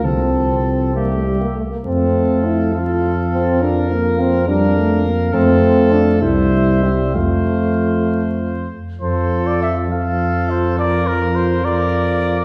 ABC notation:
X:1
M:6/8
L:1/16
Q:3/8=68
K:F
V:1 name="Trumpet"
a6 e4 z2 | f12- | f6 f6- | f6 e6 |
f8- f2 z2 | c3 d e2 f4 c2 | d2 B2 c2 d6 |]
V:2 name="Trumpet"
A6 G4 z2 | A6 A6 | B6 B6 | A6 c6 |
c8- c2 z2 | A6 A6 | B6 B6 |]
V:3 name="French horn"
C6 B, A, G, B, A, B, | C4 E2 F4 C2 | D2 B,2 C2 D4 z2 | C4 D2 E4 G,2 |
A,8- A,2 z2 | F6 F6 | F6 F6 |]
V:4 name="Euphonium" clef=bass
F,6 G,4 z2 | A,6 F,6- | F,6 G,2 A,2 B,2 | A,6 G,6 |
F,8- F,2 z2 | F,6 F,6 | F,6 F,6 |]
V:5 name="Tuba" clef=bass
C,,8- C,,2 z2 | F,,12- | F,,12 | F,,6 C,,6 |
F,,8- F,,2 z2 | F,,12- | F,,12 |]